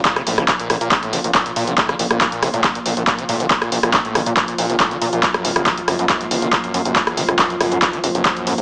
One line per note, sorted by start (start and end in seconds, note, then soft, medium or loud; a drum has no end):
0.00 8.62 A#2 medium
0.00 8.62 F3 medium
0.05 0.18 A#2 medium
0.05 kick loud
0.05 clap loud
0.05 closed hi-hat loud
0.16 0.22 C#3 medium
0.16 cross-stick medium
0.16 closed hi-hat medium
0.27 0.34 A#1 loud
0.27 0.39 A2 medium
0.27 open hi-hat loud
0.38 0.45 A#1 medium
0.38 0.44 D#3 loud
0.38 cross-stick medium
0.38 closed hi-hat medium
0.48 0.52 A#2 medium
0.48 kick loud
0.48 clap loud
0.48 closed hi-hat loud
0.59 0.68 A#2 medium
0.59 closed hi-hat medium
0.70 0.77 A#1 loud
0.70 0.76 A#2 medium
0.70 cross-stick medium
0.70 open hi-hat loud
0.81 0.93 A#2 medium
0.81 0.88 A#2 medium
0.81 closed hi-hat medium
0.91 0.98 C#3 medium
0.91 kick loud
0.91 clap loud
0.91 closed hi-hat medium
1.03 1.15 A2 medium
1.03 closed hi-hat medium
1.13 1.21 A#1 loud
1.13 1.19 D#3 loud
1.13 open hi-hat loud
1.24 1.31 A#1 medium
1.24 1.28 A#2 medium
1.24 closed hi-hat medium
1.35 1.44 A#2 medium
1.35 kick loud
1.35 clap loud
1.35 closed hi-hat medium
1.46 1.52 A#2 medium
1.46 closed hi-hat medium
1.56 1.64 A#2 loud
1.56 1.69 A#2 medium
1.56 open hi-hat medium
1.67 1.74 A#1 medium
1.67 1.73 C#3 medium
1.67 closed hi-hat medium
1.78 1.90 A2 medium
1.78 kick loud
1.78 clap loud
1.78 closed hi-hat medium
1.89 1.95 D#3 loud
1.89 cross-stick medium
1.89 closed hi-hat medium
1.99 2.07 A#1 medium
1.99 2.03 A#2 medium
1.99 open hi-hat loud
2.11 2.18 A#1 medium
2.11 2.19 A#2 medium
2.11 cross-stick medium
2.11 closed hi-hat medium
2.21 2.27 A#2 medium
2.21 kick loud
2.21 clap loud
2.21 closed hi-hat loud
2.32 2.44 A#2 medium
2.32 closed hi-hat medium
2.42 2.50 A#1 loud
2.42 2.49 C#3 medium
2.42 cross-stick medium
2.42 open hi-hat loud
2.54 2.66 A2 medium
2.54 2.61 A#2 medium
2.54 closed hi-hat medium
2.64 2.70 D#3 loud
2.64 kick loud
2.64 clap loud
2.64 closed hi-hat medium
2.75 2.79 A#2 medium
2.75 closed hi-hat medium
2.86 2.93 A#1 medium
2.86 2.95 A#2 medium
2.86 open hi-hat loud
2.97 3.04 A#1 medium
2.97 3.03 A#2 medium
2.97 closed hi-hat medium
3.07 3.20 A#2 medium
3.07 kick loud
3.07 clap loud
3.07 closed hi-hat medium
3.19 3.24 C#3 medium
3.19 closed hi-hat medium
3.29 3.42 A2 medium
3.29 3.36 A#2 medium
3.29 open hi-hat loud
3.40 3.47 A#1 medium
3.40 3.46 D#3 loud
3.40 closed hi-hat medium
3.50 3.54 A#2 medium
3.50 kick loud
3.50 clap loud
3.50 closed hi-hat medium
3.62 3.70 A#2 medium
3.62 cross-stick medium
3.62 closed hi-hat medium
3.72 3.80 A#1 medium
3.72 3.78 A#2 medium
3.72 open hi-hat loud
3.83 3.90 A#1 medium
3.83 3.95 A#2 medium
3.83 cross-stick loud
3.83 closed hi-hat medium
3.94 4.00 C#3 medium
3.94 kick loud
3.94 clap loud
3.94 closed hi-hat medium
4.05 4.17 A2 medium
4.05 closed hi-hat medium
4.15 4.23 A#1 loud
4.15 4.21 D#3 loud
4.15 cross-stick medium
4.15 open hi-hat loud
4.26 4.30 A#2 medium
4.26 4.33 A#2 medium
4.26 closed hi-hat soft
4.37 4.46 A#2 medium
4.37 kick loud
4.37 clap loud
4.37 closed hi-hat medium
4.48 4.54 A#2 medium
4.48 closed hi-hat medium
4.58 4.66 A#1 loud
4.58 4.71 A#2 medium
4.58 open hi-hat loud
4.70 4.77 A#1 medium
4.70 4.75 C#3 medium
4.70 closed hi-hat medium
4.80 4.93 A2 medium
4.80 kick loud
4.80 clap loud
4.80 closed hi-hat medium
4.91 4.97 D#3 loud
4.91 closed hi-hat medium
5.02 5.05 A#2 medium
5.02 5.09 A#2 medium
5.02 open hi-hat medium
5.13 5.20 A#1 medium
5.13 5.25 A#2 medium
5.13 closed hi-hat soft
5.23 5.29 F#2 medium
5.23 kick loud
5.23 clap loud
5.23 closed hi-hat medium
5.34 5.46 F#2 medium
5.34 cross-stick medium
5.34 closed hi-hat soft
5.45 5.52 F#1 loud
5.45 5.51 A2 medium
5.45 open hi-hat loud
5.56 5.63 F#1 medium
5.56 5.68 E2 medium
5.56 cross-stick loud
5.56 closed hi-hat medium
5.66 5.72 F#3 loud
5.66 kick loud
5.66 clap loud
5.66 closed hi-hat medium
5.77 5.81 F#2 medium
5.77 closed hi-hat soft
5.88 5.95 F#1 medium
5.88 5.97 F#2 medium
5.88 cross-stick medium
5.88 open hi-hat medium
5.99 6.06 F#2 medium
5.99 6.05 F#2 medium
5.99 closed hi-hat soft
6.09 6.22 F#2 medium
6.09 kick loud
6.09 clap loud
6.09 closed hi-hat medium
6.21 6.26 A2 medium
6.21 closed hi-hat soft
6.31 6.39 F#1 loud
6.31 6.44 E2 medium
6.31 open hi-hat loud
6.42 6.49 F#1 medium
6.42 6.48 F#3 loud
6.42 closed hi-hat medium
6.53 6.56 F#2 medium
6.53 kick loud
6.53 clap loud
6.53 closed hi-hat medium
6.64 6.72 F#2 medium
6.64 closed hi-hat medium
6.74 6.80 F#2 medium
6.74 6.82 F#2 medium
6.74 open hi-hat medium
6.85 6.92 F#1 medium
6.85 6.97 F#2 medium
6.85 closed hi-hat soft
6.96 7.02 A2 medium
6.96 kick loud
6.96 clap loud
6.96 closed hi-hat medium
7.07 7.19 E2 medium
7.07 cross-stick medium
7.07 closed hi-hat soft
7.17 7.25 F#1 medium
7.17 7.24 F#3 loud
7.17 open hi-hat loud
7.29 7.36 F#1 medium
7.29 7.32 F#2 medium
7.29 cross-stick medium
7.29 closed hi-hat soft
7.39 7.48 F#2 medium
7.39 kick loud
7.39 clap loud
7.39 closed hi-hat medium
7.50 7.56 F#2 medium
7.50 closed hi-hat soft
7.61 7.68 F#1 loud
7.61 7.73 F#2 medium
7.61 cross-stick medium
7.61 open hi-hat medium
7.72 7.79 F#2 medium
7.72 7.77 A2 medium
7.72 closed hi-hat medium
7.82 7.95 E2 medium
7.82 kick loud
7.82 clap loud
7.82 closed hi-hat medium
7.93 7.99 F#3 loud
7.93 closed hi-hat soft
8.04 8.11 F#1 loud
8.04 8.07 F#2 medium
8.04 open hi-hat loud
8.15 8.22 F#1 medium
8.15 8.24 F#2 medium
8.15 closed hi-hat medium
8.25 8.32 F#2 medium
8.25 kick loud
8.25 clap loud
8.25 closed hi-hat medium
8.37 8.49 F#2 medium
8.37 closed hi-hat soft
8.47 8.54 F#2 medium
8.47 8.53 A2 medium
8.47 open hi-hat medium
8.58 8.62 F#1 medium
8.58 8.62 E2 medium
8.58 closed hi-hat medium